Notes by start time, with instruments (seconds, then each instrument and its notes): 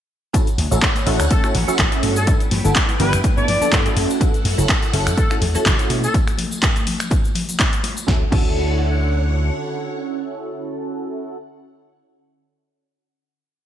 0.33 analog polysynth C#4 E4 F#4 A4, string machine C#4 C#5 F#5, kick, closed hi-hat, tambourine, shaker
0.47 closed hi-hat, tambourine, shaker
0.58 slap bass D2, open hi-hat, high conga
0.71 slap bass A1, analog polysynth C#4 E4 F#4 A4, tambourine, shaker
0.82 kick, clap, closed hi-hat, tambourine, shaker
0.95 closed hi-hat, tambourine, high conga, shaker
1.06 slap bass A1, analog polysynth C#4 E4 F#4 A4, open hi-hat
1.20 slap bass D2, finger snap, closed hi-hat, tambourine, shaker
1.30 horn section A4, kick, closed hi-hat, tambourine, high conga, shaker
1.44 analog polysynth C#4 E4 F#4 A4, finger snap, tambourine, shaker
1.55 slap bass A1, open hi-hat, low conga
1.68 analog polysynth C#4 E4 F#4 A4, tambourine, high conga, shaker
1.79 slap bass A1, kick, clap, closed hi-hat, shaker
1.92 analog polysynth C#4 E4 F#4 A4, closed hi-hat, tambourine, shaker
2.03 slap bass G2, open hi-hat, high conga
2.16 horn section A4, tambourine, shaker
2.27 analog polysynth B3 D4 E4 A4, string machine E4 B4 G5, kick, closed hi-hat, tambourine, shaker
2.40 closed hi-hat, tambourine, shaker
2.51 slap bass G2, open hi-hat, high conga, low conga
2.64 slap bass G1, analog polysynth B3 D4 E4 A4, tambourine, shaker
2.75 kick, clap, closed hi-hat, tambourine, shaker
2.89 closed hi-hat, tambourine, high conga, shaker
2.99 slap bass G1, analog polysynth B3 D4 E4 G4, horn section B4, open hi-hat, low conga
3.13 slap bass G2, finger snap, closed hi-hat, tambourine, shaker
3.24 kick, closed hi-hat, tambourine, high conga, shaker
3.37 slap bass G2, analog polysynth B3 D4 E4 A4, horn section D5, tambourine, shaker
3.48 slap bass G2, open hi-hat, low conga
3.61 analog polysynth B3 D4 E4 A4, muted slap bass stroke, tambourine, high conga, shaker
3.72 slap bass G2, kick, clap, closed hi-hat, tambourine, shaker
3.85 analog polysynth C#4 E4 F#4 A4, closed hi-hat, tambourine, shaker
3.96 slap bass F#2, string machine A4 F#5, open hi-hat, high conga
4.10 tambourine, shaker
4.20 analog polysynth C#4 E4 F#4 A4, kick, closed hi-hat, tambourine, shaker
4.34 closed hi-hat, tambourine, shaker
4.45 slap bass F#2, open hi-hat, high conga
4.58 slap bass F#1, analog polysynth C#4 E4 F#4 A4, tambourine, shaker
4.69 kick, clap, closed hi-hat, tambourine, shaker
4.83 closed hi-hat, tambourine, high conga, shaker
4.93 slap bass F#1, analog polysynth C#4 E4 F#4 A4, open hi-hat
5.07 slap bass F#2, finger snap, closed hi-hat, tambourine, shaker
5.17 horn section A4, kick, closed hi-hat, tambourine, high conga, shaker
5.29 analog polysynth C#4 E4 F#4 A4, finger snap, tambourine, shaker
5.41 slap bass E2, open hi-hat, low conga
5.55 analog polysynth C#4 E4 F#4 A4, muted slap bass stroke, tambourine, high conga, shaker
5.66 slap bass F#1, kick, clap, closed hi-hat, shaker
5.78 analog polysynth C#4 E4 F#4 A4, closed hi-hat, tambourine, shaker
5.90 slap bass B2, open hi-hat, high conga
6.04 horn section A4, tambourine, shaker
6.14 kick, closed hi-hat, tambourine, shaker
6.27 finger snap, closed hi-hat, tambourine, shaker
6.38 open hi-hat, high conga, low conga
6.51 tambourine, shaker
6.63 kick, clap, closed hi-hat, shaker
6.76 closed hi-hat, tambourine, high conga, shaker
6.87 open hi-hat, low conga
6.99 finger snap, closed hi-hat, tambourine, shaker
7.11 kick, closed hi-hat, tambourine, high conga, shaker
7.24 tambourine, shaker
7.35 open hi-hat, low conga
7.49 closed hi-hat, tambourine, high conga, shaker
7.60 kick, clap, closed hi-hat, shaker
7.73 closed hi-hat, tambourine, shaker
7.84 open hi-hat, high conga
7.97 tambourine, shaker
8.07 slap bass D2, string machine D3 C#5 F#5, analog polysynth C#4 E4 F#4 A4, kick, snare
8.31 slap bass D2, analog polysynth C#4 E4 F#4 A4, kick, crash